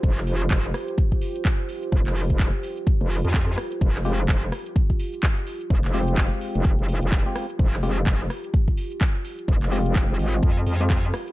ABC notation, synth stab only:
X:1
M:4/4
L:1/16
Q:"Swing 16ths" 1/4=127
K:Fm
V:1 name="Synth stab"
z16 | z16 | z2 [A,CFG] z12 z | z2 [A,CFG]8- [A,CFG]3 [A,CFG]2 z |
z2 [A,CFG] z12 z | z2 [A,CFG]8- [A,CFG] [A,CFG]2 z3 |]